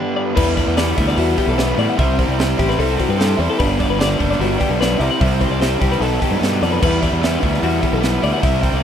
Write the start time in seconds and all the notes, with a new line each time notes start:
Already playing: G2 D3 G3 B3 D4 G4 B4
0.16 B3 D5
0.26 B4
0.35 E2 E3 G3 B3 E4 B4, kick, crash
0.56 G3 B3 E4 D5, kick, open hi-hat
0.67 E2 B4
0.76 E3 G3 B3 E4 D5, snare, open hi-hat
0.97 D2 E3 G3 B3 E4 E5, kick, open hi-hat
1.08 D5, snare
1.17 E2 E3 G3 B3 E4 F#4, open hi-hat
1.38 G3 B3 E4 G4, kick, open hi-hat
1.47 B1 A4
1.58 E3 G3 B3 E4 B4, snare, open hi-hat
1.77 A2 G3 B3 E4 D5, open hi-hat
1.90 F#5
1.97 C2 C3 G3 C4 E4 E5, kick, open hi-hat
2.18 G3 C4 E4 C5, kick, open hi-hat
2.28 C2 D5
2.38 C3 G3 C4 E4 C5, snare, open hi-hat
2.58 A1 C3 G3 C4 E4 G4, kick, open hi-hat
2.69 B4, snare
2.78 C2 C3 G3 C4 E4 A4, open hi-hat
2.99 G3 C4 E4 F#4, kick, open hi-hat
3.08 G2 B4
3.18 C3 G3 C4 E4 A4, snare, open hi-hat
3.37 E2 G3 C4 E4 C5, open hi-hat
3.50 A4
3.58 G1 G2 D3 G3 B3 D4 B4, kick, open hi-hat
3.78 G3 B3 D4 D5, kick, open hi-hat
3.89 G1 B4
3.99 D3 G3 B3 D4 D5, snare, open hi-hat
4.19 F#1 G2 D3 G3 B3 D4 E5, kick, open hi-hat
4.31 D5, snare
4.39 G1 D3 G3 B3 D4 F#4, open hi-hat
4.59 G3 B3 D4 G4, kick, open hi-hat
4.70 B1 A4
4.79 G2 D3 G3 B3 D4 B4, snare, open hi-hat
4.99 C2 C3 G3 C4 E4 D5, open hi-hat
5.11 F#5
5.20 C2 C3 G3 C4 E4 E5, kick, open hi-hat
5.40 G3 C4 E4 C5, kick, open hi-hat
5.50 C2 D5
5.60 C3 G3 C4 E4 C5, snare, open hi-hat
5.81 C2 C3 G3 C4 E4 G4, kick, open hi-hat
5.92 B4, snare
6.00 B1 B2 D#3 F#3 B3 D#4 A4, open hi-hat
6.21 F#3 B3 D#4 G4 A4, kick, open hi-hat
6.31 G2 B4
6.41 G2 B2 D#3 F#3 B3 D#4 A4, snare, open hi-hat
6.61 F2 F#3 B3 D#4 A4 D5, open hi-hat
6.72 B4
6.82 E2 E3 G3 B3 E4 B4, kick, crash
7.01 G3 B3 E4 D5, kick, open hi-hat
7.12 E2 B4
7.21 E3 G3 B3 E4 D5, snare, open hi-hat
7.41 D2 E3 G3 B3 E4 E5, kick, open hi-hat
7.54 D5, snare
7.62 E2 E3 G3 B3 E4 F#4, open hi-hat
7.82 G3 B3 E4 G4, kick, open hi-hat
7.93 B1 A4
8.01 E3 G3 B3 E4 B4, snare, open hi-hat
8.22 D2 G3 B3 E4 D5, open hi-hat
8.33 F#5
8.41 C2 C3 G3 C4 E4 E5, kick, open hi-hat
8.61 G3 C4 E4 C5, kick, open hi-hat
8.73 C2 D5